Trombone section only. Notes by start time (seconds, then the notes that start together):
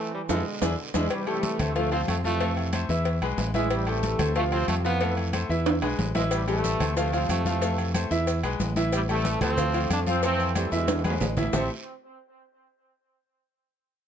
Already playing: E3 A3
0.14 G3
0.30 B2 D3 G#3
0.95 G#3
1.11 C3 E3 G3
1.27 C3 E3 A3
1.76 C3 F3 A3
1.92 C4
2.08 A3
2.25 C3 E3 A3
3.55 G#3
3.71 C3 E3 G3
3.87 C3 E3 A3
4.36 C3 F3 A3
4.52 C4
4.68 A3
4.85 E3 B3
6.16 G#3
6.32 C3 E3 G3
6.48 C3 E3 A3
6.97 C3 F3 A3
7.13 C4
7.29 A3
7.47 C3 E3 A3
8.94 C3 E3 G3
9.10 C3 E3 A3
9.43 F3 A3 C4
9.92 D4
10.09 C4
10.23 E3 A3 C4
10.57 G3
10.74 B2 D3 G#3
11.54 C4